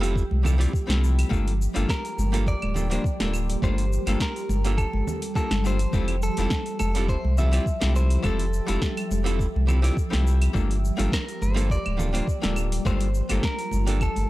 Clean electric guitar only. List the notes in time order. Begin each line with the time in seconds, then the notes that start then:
Already playing: G4
1.90 A#4
2.48 D5
3.64 C5
4.22 A#4
4.78 A4
5.36 A4
5.67 C5
6.23 A4
6.80 A4
7.09 C5
7.38 E5
7.96 C5
8.26 A4
11.14 A#4
11.42 C5
11.71 D5
12.87 C5
13.45 A#4
14.03 A4